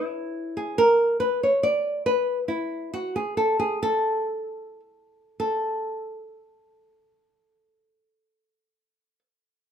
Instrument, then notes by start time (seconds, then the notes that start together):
nylon-string guitar
Already playing: E4
0.57 G#4
0.78 A#4
1.20 B4
1.43 C#5
1.63 D5
2.06 B4
2.48 E4
2.94 F#4
3.16 G#4
3.37 A4
3.60 G#4
3.83 A4
5.40 A4